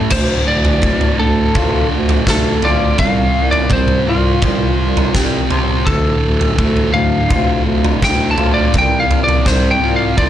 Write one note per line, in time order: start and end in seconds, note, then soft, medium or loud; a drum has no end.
0.00 0.10 A3 loud
0.00 0.10 A3 medium
0.00 0.10 C#4 medium
0.10 0.42 D2 medium
0.10 0.82 D2 medium
0.10 0.83 A2 loud
0.10 0.84 D3 medium
0.10 0.45 C5 loud
0.10 kick loud
0.10 floor tom medium
0.10 crash loud
0.48 0.78 D2 medium
0.48 1.16 D5 loud
0.65 floor tom medium
0.82 1.14 D2 medium
0.82 1.18 D2 medium
0.82 2.63 A2 medium
0.82 1.18 A2 medium
0.82 1.19 D3 medium
0.82 kick loud
0.82 floor tom medium
0.82 mid tom medium
1.01 floor tom medium
1.19 1.49 D2 medium
1.19 1.54 D2 medium
1.19 1.54 A2 medium
1.19 1.90 D3 medium
1.19 1.55 D3 medium
1.19 1.87 A4 medium
1.55 2.27 D2 medium
1.55 1.86 D2 medium
1.55 2.27 A2 medium
1.55 2.27 D3 medium
1.55 2.63 F4 medium
1.55 kick loud
1.55 floor tom medium
1.91 2.22 D2 medium
1.91 2.99 D3 medium
2.09 floor tom medium
2.26 2.57 D2 medium
2.26 2.62 D2 medium
2.26 2.63 A2 medium
2.26 2.63 D3 medium
2.26 2.99 A3 medium
2.26 2.66 A4 medium
2.26 kick loud
2.26 snare medium
2.62 2.93 D2 medium
2.62 2.97 D2 medium
2.62 2.97 A2 medium
2.62 2.97 D3 medium
2.62 4.08 F4 medium
2.62 2.99 D5 medium
2.62 floor tom medium
2.98 3.30 C2 medium
2.98 3.70 C3 medium
2.98 4.79 C3 medium
2.98 3.71 G3 loud
2.98 3.71 C4 loud
2.98 3.49 F5 loud
2.98 kick loud
2.98 floor tom medium
3.35 3.66 C2 medium
3.51 3.72 D5 medium
3.51 floor tom medium
3.70 4.01 C2 medium
3.70 4.06 C3 medium
3.70 4.06 G3 medium
3.70 5.51 C4 medium
3.70 4.06 C4 medium
3.70 4.09 C5 medium
3.70 kick loud
3.70 floor tom medium
3.70 mid tom medium
3.88 floor tom medium
4.06 4.37 C2 medium
4.06 4.42 C3 medium
4.06 4.43 G3 medium
4.06 4.43 C4 medium
4.06 4.79 F4 medium
4.06 5.12 F4 medium
4.42 4.73 C2 medium
4.42 5.13 C3 medium
4.42 5.14 G3 medium
4.42 5.14 C4 loud
4.42 5.50 C5 medium
4.42 kick loud
4.42 floor tom medium
4.79 5.10 C2 medium
4.79 7.30 F4 medium
4.97 floor tom medium
5.14 5.45 C2 medium
5.14 5.50 C3 medium
5.14 5.51 G3 medium
5.14 5.51 C4 medium
5.14 5.87 G4 medium
5.14 kick loud
5.14 snare medium
5.50 5.85 C3 medium
5.50 5.85 G3 medium
5.50 5.85 C4 medium
5.50 5.87 C5 medium
5.50 floor tom medium
5.86 6.58 D2 loud
5.86 6.17 D2 loud
5.86 7.66 D2 medium
5.86 6.58 A2 loud
5.86 6.59 D3 loud
5.86 6.98 A4 medium
5.86 kick loud
5.86 floor tom medium
6.23 6.53 D2 medium
6.41 floor tom medium
6.59 6.89 D2 medium
6.59 6.93 D2 medium
6.59 8.38 A2 medium
6.59 6.93 A2 medium
6.59 6.94 D3 medium
6.59 kick loud
6.59 floor tom medium
6.59 mid tom medium
6.77 floor tom medium
6.94 7.24 D2 medium
6.94 7.29 D2 medium
6.94 7.29 A2 medium
6.94 7.64 D3 medium
6.94 7.30 D3 medium
6.94 7.62 F5 medium
7.30 8.01 D2 medium
7.30 7.61 D2 medium
7.30 8.01 A2 loud
7.30 8.02 D3 loud
7.30 8.38 F4 medium
7.30 kick loud
7.30 floor tom medium
7.65 7.96 D2 medium
7.65 8.74 D3 medium
7.84 floor tom medium
8.02 8.37 D2 medium
8.02 8.33 D2 medium
8.02 8.37 A2 medium
8.02 8.38 D3 medium
8.02 8.74 A3 medium
8.02 8.28 G5 loud
8.02 kick loud
8.02 snare medium
8.31 8.51 A5 medium
8.38 8.68 D2 medium
8.38 8.72 D2 medium
8.38 8.72 A2 medium
8.38 8.72 D3 medium
8.38 9.82 F4 medium
8.38 floor tom medium
8.54 8.74 D5 loud
8.73 9.05 C2 medium
8.73 9.45 C3 medium
8.73 10.29 C3 medium
8.73 9.45 G3 loud
8.73 9.46 C4 loud
8.73 kick loud
8.73 floor tom medium
8.78 8.99 G5 loud
9.00 9.21 F5 loud
9.08 9.39 C2 medium
9.08 floor tom medium
9.24 9.47 D5 medium
9.29 floor tom medium
9.44 9.76 C2 medium
9.44 9.80 C3 medium
9.44 9.80 G3 medium
9.44 10.29 C4 medium
9.44 9.81 C4 medium
9.44 9.71 C5 medium
9.44 kick loud
9.44 snare medium
9.44 floor tom medium
9.44 mid tom medium
9.71 9.93 G5 medium
9.81 10.12 C2 medium
9.81 10.17 C3 medium
9.81 10.17 G3 medium
9.81 10.18 C4 medium
9.81 10.29 F4 medium
9.96 10.17 F5 medium
10.17 10.29 C2 medium
10.17 10.29 C3 medium
10.17 10.29 G3 medium
10.17 10.29 C4 medium
10.17 10.29 C5 medium
10.17 10.29 D5 medium
10.17 kick loud
10.17 floor tom medium